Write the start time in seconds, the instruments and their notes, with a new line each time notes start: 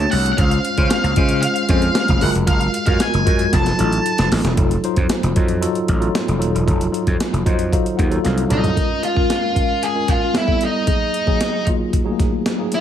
Already playing: tine electric piano A3 D4 F#4 C#5, lead electric guitar A5
0.11 slap bass C2, lead electric guitar F#5, open hi-hat
0.26 closed hi-hat
0.33 lead electric guitar F#5
0.38 slap bass C#2, tine electric piano G#3 C#4 F4 C5, lead electric guitar F5, kick, closed hi-hat
0.51 closed hi-hat
0.65 closed hi-hat
0.77 slap bass C#3, tine electric piano G#3 C#4 F4 C5, kick, closed hi-hat
0.91 lead electric guitar F5, snare, closed hi-hat
1.04 slap bass C#2, closed hi-hat
1.16 slap bass C#3, tine electric piano G#3 C#4 F4 C5, kick, closed hi-hat
1.29 closed hi-hat
1.42 lead electric guitar F5, closed hi-hat
1.56 closed hi-hat
1.69 slap bass F2, tine electric piano G#3 C#4 F4 C5, kick, snare, closed hi-hat
1.82 closed hi-hat
1.95 snare, closed hi-hat
2.08 slap bass F1, kick, closed hi-hat
2.21 slap bass F#1, tine electric piano G#3 F4 F#4 A#4, lead electric guitar F#5, open hi-hat
2.35 slap bass F1, closed hi-hat
2.47 slap bass F#1, lead electric guitar F5, kick, closed hi-hat
2.61 closed hi-hat
2.74 closed hi-hat
2.86 slap bass F#2, tine electric piano G#3 F4 F#4 A#4, lead electric guitar F5, kick, snare, closed hi-hat
3.00 lead electric guitar G#5, snare, closed hi-hat
3.14 slap bass F#1, closed hi-hat
3.25 slap bass F#2, tine electric piano G#3 F4 F#4 A#4, kick, closed hi-hat
3.39 closed hi-hat
3.52 slap bass F1, tine electric piano F#3 D#4 F4 A4, lead electric guitar A5, kick, snare, closed hi-hat
3.66 snare, closed hi-hat
3.77 slap bass A1, tine electric piano F#3 D#4 F4 A4, closed hi-hat
3.93 closed hi-hat
4.06 closed hi-hat
4.18 slap bass F1, snare, closed hi-hat
4.31 slap bass A1, snare, open hi-hat
4.44 slap bass E1, snare, closed hi-hat
4.57 slap bass F1, tine electric piano F#3 D#4 F4 A4, kick, closed hi-hat
4.71 closed hi-hat
4.84 tine electric piano F#3 D#4 F4 C5, closed hi-hat
4.96 slap bass F2, kick, closed hi-hat
5.09 snare, closed hi-hat
5.23 slap bass F1, closed hi-hat
5.36 slap bass F2, tine electric piano F#3 D#4 F4 A4, kick, closed hi-hat
5.48 closed hi-hat
5.61 tine electric piano F#3 D#4 F4 A4, closed hi-hat
5.75 closed hi-hat
5.88 slap bass A1, kick, closed hi-hat
5.99 tine electric piano F#3 D#4 F4 A4, closed hi-hat
6.15 snare, closed hi-hat
6.28 slap bass F1, closed hi-hat
6.39 slap bass D#1, tine electric piano F#3 D#4 F4 A4, closed hi-hat
6.55 slap bass E1, closed hi-hat
6.66 slap bass F1, tine electric piano F#3 D#4 F4 A4, kick, closed hi-hat
6.81 closed hi-hat
6.92 tine electric piano F#3 D#4 F4 A4, closed hi-hat
7.07 slap bass F2, kick, closed hi-hat
7.20 snare, closed hi-hat
7.33 slap bass F1, closed hi-hat
7.46 slap bass F2, tine electric piano F#3 D#4 F4 C5 D#5, kick, closed hi-hat
7.59 closed hi-hat
7.72 tine electric piano F#3 D#4 F4 A4 F5, kick, closed hi-hat
7.86 closed hi-hat
7.97 slap bass D#2, tine electric piano F#5, kick, closed hi-hat
8.10 tine electric piano F#3 D#4 F4 A4, closed hi-hat
8.24 slap bass C2, tine electric piano F5, snare, closed hi-hat
8.38 closed hi-hat
8.49 slap bass C2, tine electric piano F#3 D#4 F4 A4 A5, lead electric guitar D#4, closed hi-hat, mid tom
8.64 closed hi-hat, floor tom
8.75 tine electric piano G#3 C#4 F4 A#4, kick, closed hi-hat
9.03 lead electric guitar F4, closed hi-hat
9.14 tine electric piano G#3 C#4 F4 A#4, kick
9.30 snare, closed hi-hat
9.55 tine electric piano G#3 C#4 F4 A#4, kick, closed hi-hat
9.83 lead electric guitar G#4, closed hi-hat
9.95 tine electric piano G#3 C#4 F4 A#4
10.08 lead electric guitar F4, kick, snare, closed hi-hat
10.33 tine electric piano G3 B3 E4 A4, snare, closed hi-hat
10.37 lead electric guitar E4
10.47 tine electric piano G3 B3 E4 A4, kick
10.61 closed hi-hat
10.65 lead electric guitar D#4
10.86 tine electric piano F#3 A#3 D#4 G#4, kick, closed hi-hat
11.14 closed hi-hat
11.26 tine electric piano F#3 A#3 D#4 G#4, kick
11.41 snare, closed hi-hat
11.66 tine electric piano F#3 A#3 D#4 F4, kick, closed hi-hat
11.93 kick, closed hi-hat
12.04 tine electric piano F#3 A3 D#4 G#4
12.12 tine electric piano A#3
12.20 kick, snare, closed hi-hat
12.46 snare, closed hi-hat
12.58 tine electric piano F#3 A#3 D#4 G#4
12.72 lead electric guitar F4, closed hi-hat